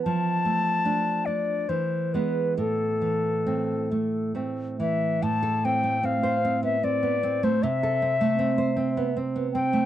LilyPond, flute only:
\new Staff \with { instrumentName = "Flute" } { \time 3/4 \key a \minor \tempo 4 = 75 a''4. d''8 c''8 b'8 | a'2 r8 e''8 | a''8 g''8 f''8. e''16 d''8. c''16 | e''2 r8 g''8 | }